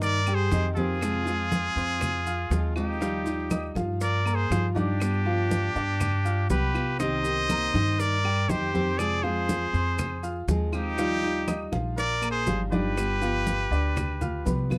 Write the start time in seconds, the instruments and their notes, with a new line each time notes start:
Already playing: upright bass G2, grand piano D#3 D#4 D#5
0.01 trumpet A#4, muted trumpet D5, muted nylon-string guitar stroke, high bongo, high conga, maracas
0.26 grand piano G3 G4 G5, high conga, claves, maracas
0.34 trumpet G#4, muted trumpet C5
0.51 upright bass F2, nylon-string guitar D#3 A#3 C4 G4, grand piano D#3 D#4 D#5, high bongo, low bongo, high conga, maracas
0.75 nylon-string guitar D#3 A#3 C4 G4, grand piano C4 C5 C6, trumpet F4, muted trumpet G#4, high conga, maracas
1.01 nylon-string guitar C3 F3 G#3 C4 F4, high bongo, claves, maracas
1.25 grand piano F3 F4 F5, nylon-string guitar F3 G#3 C4 F4, high conga, maracas
1.52 high bongo, high conga, maracas
1.76 upright bass F2, grand piano C4 C5 C6, high bongo, maracas
2.01 muted nylon-string guitar stroke, high bongo, high conga, low conga, claves, maracas
2.26 grand piano F4 F5 F6, high bongo, high conga, maracas
2.50 upright bass D#2, nylon-string guitar F3 G#3 C4 F4, grand piano G#3 G#4 G#5, high bongo, low bongo, high conga, maracas
2.76 nylon-string guitar F3 G#3 C4 F4, trumpet D#4, muted trumpet G4, high bongo, claves, maracas
3.00 nylon-string guitar D#3 G3 D#4 F4, grand piano F3 F4 F5, high bongo, high conga, maracas
3.25 nylon-string guitar G3 D#4 F4, high conga, maracas
3.50 grand piano D#4 D#5 D#6, high bongo, high conga, claves, maracas
3.75 upright bass G2, grand piano F3 F4 F5, high conga, maracas
4.00 trumpet A#4, muted trumpet D5, muted nylon-string guitar stroke, high bongo, high conga, maracas
4.25 grand piano A#3 A#4 A#5, high conga, claves, maracas
4.34 trumpet G#4, muted trumpet C5
4.50 upright bass G2, nylon-string guitar D#3 G3 D#4 F4, grand piano F3 F4 F5, high bongo, low bongo, high conga, maracas
4.75 nylon-string guitar G3 D#4 F4, trumpet D4, grand piano D4 D5 D6, muted trumpet G4, high conga, maracas
5.00 nylon-string guitar G3 B3 F4, high bongo, high conga, claves, maracas
5.25 grand piano F3 F4 F5, nylon-string guitar B3 F4, high conga
5.51 high bongo, high conga, maracas
5.75 upright bass G2, grand piano D4 D5 D6, high bongo, maracas
6.00 muted nylon-string guitar stroke, high bongo, high conga, low conga, claves, maracas
6.25 grand piano F4 F5 F6, high bongo, high conga, maracas
6.50 upright bass C2, nylon-string guitar G3 B3 F4, grand piano B3 B4 B5, trumpet G4, muted trumpet B4, high bongo, low bongo, high conga, maracas
6.74 nylon-string guitar B3 F4, high bongo, claves, maracas
6.99 nylon-string guitar C3 D#3 A#3 C4 G4, grand piano D#3 D#4 D#5, trumpet C5, muted trumpet D#5, high bongo, high conga, maracas
7.24 nylon-string guitar D#3 A#3 C4 G4, high conga, maracas
7.49 grand piano A#3 A#4 A#5, high bongo, high conga, claves, maracas
7.74 upright bass G2, grand piano D#3 D#4 D#5, high conga, maracas
7.99 trumpet A#4, muted trumpet D5, muted nylon-string guitar stroke, high bongo, high conga, maracas
8.24 grand piano G3 G4 G5, high conga, claves
8.49 upright bass F2, grand piano D#3 D#4 D#5, nylon-string guitar D#3 A#3 C4 G4, trumpet G4, muted trumpet C5, high bongo, low bongo, high conga, maracas
8.74 nylon-string guitar D#3 A#3 C4 G4, grand piano C4 C5 C6, high conga, maracas
8.98 nylon-string guitar C3 F3 G#3 C4 F4, trumpet G#4, muted trumpet D5, high bongo, high conga, claves, maracas
9.23 grand piano F3 F4 F5, nylon-string guitar F3 G#3 C4 F4, trumpet G#4, muted trumpet C5, high conga
9.49 high bongo, high conga, maracas
9.73 upright bass F2, grand piano C4 C5 C6, high bongo, maracas
9.98 muted nylon-string guitar stroke, high bongo, high conga, low conga, claves, maracas
10.23 grand piano F4 F5 F6, high bongo, high conga, maracas
10.48 upright bass D#2, nylon-string guitar F3 G#3 C4 F4, grand piano G#3 G#4 G#5, high bongo, low bongo, high conga, maracas
10.72 nylon-string guitar F3 G#3 C4 F4, trumpet D#4, muted trumpet G4, high bongo, claves, maracas
10.98 nylon-string guitar D#3 G3 D#4 F4, grand piano F3 F4 F5, high bongo, high conga, maracas
11.22 nylon-string guitar G3 D#4 F4, high conga
11.48 grand piano D#4 D#5 D#6, high bongo, high conga, claves, maracas
11.72 upright bass A#1, grand piano F3 F4 F5, high conga, maracas
11.97 trumpet A#4, muted trumpet D5, muted nylon-string guitar stroke, high bongo, high conga, maracas
12.21 grand piano A#3 A#4 A#5, high conga, claves, maracas
12.30 trumpet G#4, muted trumpet C5
12.46 upright bass G1, nylon-string guitar D#3 G3 D#4 F4, grand piano F3 F4 F5, high bongo, low bongo, high conga, maracas
12.72 nylon-string guitar G3 D#4 F4, grand piano D4 D5 D6, trumpet G4, muted trumpet B4, high conga, maracas
12.97 nylon-string guitar G3 B3 F4, high bongo, claves, maracas
13.21 grand piano F3 F4 F5, nylon-string guitar B3 F4, high conga, maracas
13.47 high bongo, high conga, maracas
13.71 upright bass D2, grand piano D4 D5 D6, high bongo, maracas
13.96 muted nylon-string guitar stroke, high bongo, high conga, low conga, claves, maracas
14.21 grand piano F4 F5 F6, high bongo, high conga, low conga, maracas
14.45 upright bass C2, nylon-string guitar G3 B3 F4, grand piano B3 B4 B5, low bongo, high conga, maracas
14.70 nylon-string guitar B3 F4, low bongo, high conga, claves, maracas